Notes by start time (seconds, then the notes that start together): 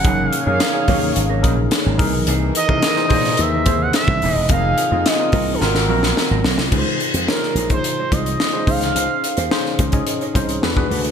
Already playing: F#5
0.03 F#1 F#3 A#3 C#4 D#4 G#4 A#4 C#5, kick, closed hi-hat
0.29 F5, closed hi-hat
0.46 F#2 F#3 A#3 C#4 D#4 G#4 A#4 F5
0.60 snare, closed hi-hat
0.73 C#4 D#4 G#4 C#5, muted clean electric guitar stroke
0.87 D#2 F#3 A#3 C#4 D#4 G#4 C#5, kick, open hi-hat
1.03 muted clean electric guitar stroke
1.16 G#1, muted clean electric guitar stroke, closed hi-hat
1.30 F#3 A#3 D#4 A#4
1.42 A#1 F#3 A#3 C#4 D#4 G#4 A#4, kick, closed hi-hat
1.58 muted clean electric guitar stroke
1.71 muted clean electric guitar stroke, snare, closed hi-hat
1.86 G#1 F#3 A#3 D#4 G#4
1.97 C2 D#3 E3 A#3 D#4 G#4 A#4, kick, open hi-hat
2.13 B1, muted clean electric guitar stroke
2.27 C2 E3 A#3 D#4 G#4, closed hi-hat
2.55 D#5, muted clean electric guitar stroke, closed hi-hat
2.68 C3 E3 A#3 D#4 E4 G#4 A#4, kick
2.82 snare, closed hi-hat
2.95 D#4 E4 G#4 C5, muted clean electric guitar stroke, snare
3.08 A#2 E3 A#3 D#4 G#4 C5, kick, open hi-hat
3.12 G#4
3.24 muted clean electric guitar stroke, snare
3.37 D#2 E5, muted clean electric guitar stroke, closed hi-hat
3.54 E3 A#3 D#4 A#4
3.65 D#2 E3 C4 G#4 C5, kick, closed hi-hat
3.69 A#3 D#4 G#4
3.82 F#5, muted clean electric guitar stroke
3.93 E5, snare, closed hi-hat
4.08 C2, muted clean electric guitar stroke, kick
4.22 D#1 E3 A#3 D#4 G#4, open hi-hat
4.33 E1 D#5
4.38 muted clean electric guitar stroke
4.48 F1 F3 A#3 C4 D#4 F4 G#4 A#4 F5, kick, closed hi-hat
4.52 A#4
4.78 muted clean electric guitar stroke, closed hi-hat
4.91 F2 A#3 C4 D#4 F4 G#4 A#4
5.06 D#5, snare, closed hi-hat
5.18 C4 D#4 F4 A#4, muted clean electric guitar stroke
5.32 C2 A#3 C4 D#4 F4 A#4, kick, open hi-hat
5.48 muted clean electric guitar stroke
5.54 A4
5.60 G#1 D#3 C4 F4 F#4 A#4, snare
5.75 muted clean electric guitar stroke, snare
5.89 A#1 F#3 B3 C4 F4 F#4 A#4 F5
5.96 C4
6.03 muted clean electric guitar stroke, snare
6.17 muted clean electric guitar stroke, snare
6.31 G#1 F#3 C4 F4 A#4
6.44 B1 F#3 C4 F4 A#4, snare
6.57 C2, muted clean electric guitar stroke, snare
6.71 C#2 G#3 D#4 F4 G#4 B4 C5, kick, crash
6.79 C5
7.00 muted clean electric guitar stroke, closed hi-hat
7.14 F2 G#3 D#4 F4 C5, closed hi-hat
7.28 D#4 F4 G#4 A#4 C#5, snare
7.43 muted clean electric guitar stroke, snare
7.55 A#1 G#3 D#4 F4 C5, closed hi-hat
7.69 D#4 F4 G#4 C5, muted clean electric guitar stroke, kick, closed hi-hat
7.84 muted clean electric guitar stroke, closed hi-hat
7.99 G#3 D#4 F4 C#5
8.11 C2 G#3 D#4 F4 G#4 C5 D#5, kick, closed hi-hat
8.26 muted clean electric guitar stroke, closed hi-hat
8.40 muted clean electric guitar stroke, snare
8.53 G#3 D#4 F4 G#4 C5
8.67 C#2 C#4 D#4 G#4 C5 F5, kick, open hi-hat
8.81 muted clean electric guitar stroke, snare, closed hi-hat
8.95 C#2 C#4 D#4 G#4 C5, closed hi-hat
9.23 muted clean electric guitar stroke, closed hi-hat
9.37 D#2 C#4 D#4 G#4 C5, closed hi-hat
9.50 C#4 D#4 G#4 C5, snare
9.65 muted clean electric guitar stroke, snare
9.79 C#2 C#4 D#4 G#4 C5, kick, closed hi-hat
9.92 C#4 D#4 G#4 D#5, muted clean electric guitar stroke, kick, closed hi-hat
10.07 muted clean electric guitar stroke, closed hi-hat
10.21 C#4 D#4 G#4 C#5, closed hi-hat
10.34 C2 C#4 D#4 G#4 C5, kick, closed hi-hat
10.49 muted clean electric guitar stroke, closed hi-hat
10.62 E2 D4 F#4 G#4 B4, muted clean electric guitar stroke, snare
10.76 G#3 D4 F#4 G#4 B4, kick
10.90 D2 G#3 D4 F#4 B4, open hi-hat
11.04 muted clean electric guitar stroke, closed hi-hat